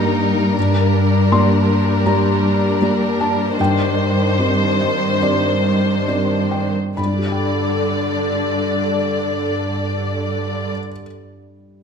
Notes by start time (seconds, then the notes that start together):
Already playing: G2 G3 A#3 D#4 G4 A#4 D#5
0.57 G2 G3 D4
1.32 A#3 G4 D5 C6
2.06 A#3 G4 D5 A#5
2.82 A#3 G4 D5
3.21 A5
3.58 G2 D#3 C5 G5
4.39 C4 G4 C5
4.81 D#5
5.21 C4 G4 D5
6.07 C4 G4 D5
6.51 G5
6.96 G2 D3 D4 D5 B5
7.05 G3
7.12 D4
7.18 G4
7.26 D5
7.32 G5